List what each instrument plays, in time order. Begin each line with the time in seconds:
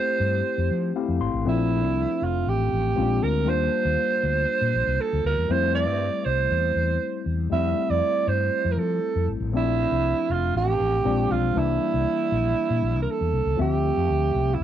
Already playing: tine electric piano A3 C4 E4 G4, alto saxophone C5
0.20 fretless electric bass G2
0.58 fretless electric bass F2
0.71 fretless electric bass F3
0.95 tine electric piano A3 C4 E4 G4 F5
1.08 fretless electric bass F2
1.21 fretless electric bass G#1, tine electric piano C6
1.33 fretless electric bass A1
1.45 fretless electric bass A#1, tine electric piano F3 A3 C4 D4, alto saxophone E4
1.84 fretless electric bass C2
2.22 fretless electric bass F1, alto saxophone F4
2.47 fretless electric bass A1, alto saxophone G4
2.72 fretless electric bass A1
2.96 fretless electric bass A#1, tine electric piano G#3 C4 C#4 F4
3.02 tine electric piano D4
3.23 fretless electric bass D2, alto saxophone A#4
3.45 fretless electric bass D#2, tine electric piano G3 A#3 D4 F4, alto saxophone C5
3.85 fretless electric bass D#2
4.23 fretless electric bass D2
4.61 fretless electric bass A#2
4.74 fretless electric bass A#1
4.87 fretless electric bass C2
5.01 alto saxophone A4
5.13 fretless electric bass D2
5.25 fretless electric bass D2, alto saxophone A#4
5.37 fretless electric bass E2
5.48 fretless electric bass F2, tine electric piano G3 A3 C4 E4, alto saxophone C5
5.75 alto saxophone D5
5.88 fretless electric bass G2
6.25 fretless electric bass C2, alto saxophone C5
6.51 fretless electric bass E2
6.76 fretless electric bass E2
7.26 fretless electric bass E2
7.50 fretless electric bass F2, tine electric piano G3 A3 C4 E4, alto saxophone E5
7.90 fretless electric bass F2, alto saxophone D5
8.27 fretless electric bass G2, alto saxophone C5
8.65 fretless electric bass F2
8.72 alto saxophone A#4
8.77 fretless electric bass F3, alto saxophone A4
9.16 fretless electric bass F2
9.28 fretless electric bass G#1
9.40 fretless electric bass A1
9.52 fretless electric bass A#1, tine electric piano F3 A3 C4 D4
9.57 alto saxophone E4
9.92 fretless electric bass C2
10.30 fretless electric bass F1, alto saxophone F4
10.55 fretless electric bass A1, alto saxophone G4
10.80 fretless electric bass A1
11.05 fretless electric bass A#1, tine electric piano F3 G#3 C4 D4
11.31 fretless electric bass B1, alto saxophone F4
11.54 fretless electric bass C2, tine electric piano E3 G3 A#3 D4, alto saxophone E4
11.94 fretless electric bass C2
12.32 fretless electric bass A#1
12.70 fretless electric bass A#2
12.82 fretless electric bass A#1
12.95 fretless electric bass C2
13.02 alto saxophone A#4
13.11 alto saxophone A4
13.21 fretless electric bass E2
13.33 fretless electric bass C2
13.46 fretless electric bass C#2
13.57 fretless electric bass D2, tine electric piano F3 A3 C4 E5
13.61 alto saxophone G4
13.97 fretless electric bass F2
14.10 fretless electric bass D2
14.35 fretless electric bass C2
14.54 alto saxophone E4
14.60 fretless electric bass D2